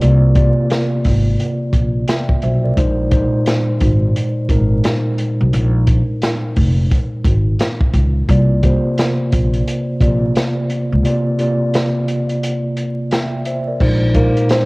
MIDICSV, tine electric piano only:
0, 0, Header, 1, 2, 480
1, 0, Start_track
1, 0, Tempo, 689655
1, 10, Time_signature, 4, 2, 24, 8
1, 10199, End_track
2, 0, Start_track
2, 0, Title_t, "Tine electric piano"
2, 0, Program_c, 0, 4
2, 0, Control_c, 0, 64, 127
2, 0, Note_on_c, 0, 48, 83
2, 0, Note_on_c, 0, 58, 74
2, 0, Note_on_c, 0, 65, 72
2, 0, Note_on_c, 0, 74, 87
2, 4, Note_off_c, 0, 58, 0
2, 4, Note_on_c, 0, 58, 82
2, 9, Note_off_c, 0, 65, 0
2, 9, Note_on_c, 0, 65, 75
2, 14, Note_off_c, 0, 74, 0
2, 14, Note_on_c, 0, 74, 92
2, 204, Note_off_c, 0, 48, 0
2, 207, Note_off_c, 0, 58, 0
2, 209, Note_off_c, 0, 65, 0
2, 212, Note_off_c, 0, 74, 0
2, 242, Note_on_c, 0, 48, 82
2, 247, Note_on_c, 0, 58, 76
2, 252, Note_on_c, 0, 65, 78
2, 257, Note_on_c, 0, 74, 95
2, 1003, Note_off_c, 0, 48, 0
2, 1006, Note_off_c, 0, 58, 0
2, 1008, Note_off_c, 0, 65, 0
2, 1011, Note_off_c, 0, 74, 0
2, 1450, Note_on_c, 0, 79, 66
2, 1454, Note_on_c, 0, 76, 54
2, 1678, Note_off_c, 0, 79, 0
2, 1680, Note_off_c, 0, 76, 0
2, 1690, Note_on_c, 0, 76, 71
2, 1695, Note_on_c, 0, 72, 62
2, 1831, Note_off_c, 0, 76, 0
2, 1833, Note_off_c, 0, 72, 0
2, 1839, Note_on_c, 0, 74, 65
2, 1843, Note_on_c, 0, 70, 56
2, 1921, Note_on_c, 0, 46, 88
2, 1925, Note_on_c, 0, 56, 77
2, 1931, Note_on_c, 0, 63, 77
2, 1936, Note_on_c, 0, 72, 90
2, 1938, Control_c, 0, 64, 0
2, 2065, Control_c, 0, 64, 127
2, 2067, Note_off_c, 0, 74, 0
2, 2069, Note_off_c, 0, 70, 0
2, 2125, Note_off_c, 0, 46, 0
2, 2128, Note_off_c, 0, 56, 0
2, 2130, Note_off_c, 0, 63, 0
2, 2133, Note_off_c, 0, 72, 0
2, 2159, Note_on_c, 0, 46, 89
2, 2164, Note_on_c, 0, 56, 72
2, 2169, Note_on_c, 0, 63, 77
2, 2174, Note_on_c, 0, 72, 94
2, 2922, Note_off_c, 0, 46, 0
2, 2924, Note_off_c, 0, 56, 0
2, 2927, Note_off_c, 0, 63, 0
2, 2930, Note_off_c, 0, 72, 0
2, 3121, Note_on_c, 0, 46, 76
2, 3126, Note_on_c, 0, 56, 76
2, 3131, Note_on_c, 0, 63, 71
2, 3136, Note_on_c, 0, 70, 88
2, 3707, Note_off_c, 0, 46, 0
2, 3710, Note_off_c, 0, 56, 0
2, 3712, Note_off_c, 0, 63, 0
2, 3715, Note_off_c, 0, 70, 0
2, 5767, Note_on_c, 0, 48, 81
2, 5772, Note_on_c, 0, 58, 75
2, 5777, Note_on_c, 0, 65, 77
2, 5779, Control_c, 0, 64, 0
2, 5782, Note_on_c, 0, 74, 98
2, 5906, Control_c, 0, 64, 127
2, 5968, Note_off_c, 0, 48, 0
2, 5971, Note_off_c, 0, 58, 0
2, 5973, Note_off_c, 0, 65, 0
2, 5976, Note_off_c, 0, 74, 0
2, 6006, Note_on_c, 0, 48, 87
2, 6011, Note_on_c, 0, 58, 83
2, 6016, Note_on_c, 0, 65, 72
2, 6021, Note_on_c, 0, 72, 97
2, 6765, Note_off_c, 0, 48, 0
2, 6768, Note_off_c, 0, 58, 0
2, 6770, Note_off_c, 0, 65, 0
2, 6772, Note_off_c, 0, 72, 0
2, 6960, Note_on_c, 0, 48, 80
2, 6965, Note_on_c, 0, 58, 75
2, 6970, Note_on_c, 0, 65, 75
2, 6975, Note_on_c, 0, 74, 86
2, 7547, Note_off_c, 0, 48, 0
2, 7550, Note_off_c, 0, 58, 0
2, 7552, Note_off_c, 0, 65, 0
2, 7554, Note_off_c, 0, 74, 0
2, 7680, Note_on_c, 0, 48, 84
2, 7684, Note_on_c, 0, 58, 83
2, 7690, Note_on_c, 0, 65, 76
2, 7694, Note_on_c, 0, 74, 93
2, 7885, Note_off_c, 0, 48, 0
2, 7887, Note_off_c, 0, 58, 0
2, 7890, Note_off_c, 0, 65, 0
2, 7892, Note_off_c, 0, 74, 0
2, 7923, Note_on_c, 0, 48, 80
2, 7928, Note_on_c, 0, 58, 78
2, 7933, Note_on_c, 0, 65, 81
2, 7938, Note_on_c, 0, 74, 92
2, 8684, Note_off_c, 0, 48, 0
2, 8686, Note_off_c, 0, 58, 0
2, 8689, Note_off_c, 0, 65, 0
2, 8691, Note_off_c, 0, 74, 0
2, 9130, Note_on_c, 0, 79, 65
2, 9134, Note_on_c, 0, 76, 58
2, 9358, Note_off_c, 0, 79, 0
2, 9360, Note_off_c, 0, 76, 0
2, 9371, Note_on_c, 0, 76, 71
2, 9375, Note_on_c, 0, 72, 62
2, 9511, Note_off_c, 0, 76, 0
2, 9513, Note_off_c, 0, 72, 0
2, 9519, Note_on_c, 0, 74, 67
2, 9523, Note_on_c, 0, 70, 55
2, 9600, Note_on_c, 0, 46, 88
2, 9605, Note_on_c, 0, 56, 82
2, 9610, Note_on_c, 0, 63, 80
2, 9615, Note_on_c, 0, 72, 89
2, 9619, Control_c, 0, 64, 0
2, 9737, Control_c, 0, 64, 127
2, 9746, Note_off_c, 0, 74, 0
2, 9749, Note_off_c, 0, 70, 0
2, 9805, Note_off_c, 0, 46, 0
2, 9807, Note_off_c, 0, 56, 0
2, 9810, Note_off_c, 0, 63, 0
2, 9812, Note_off_c, 0, 72, 0
2, 9839, Note_on_c, 0, 46, 93
2, 9844, Note_on_c, 0, 56, 72
2, 9849, Note_on_c, 0, 63, 77
2, 9854, Note_on_c, 0, 72, 93
2, 10199, Note_off_c, 0, 46, 0
2, 10199, Note_off_c, 0, 56, 0
2, 10199, Note_off_c, 0, 63, 0
2, 10199, Note_off_c, 0, 72, 0
2, 10199, End_track
0, 0, End_of_file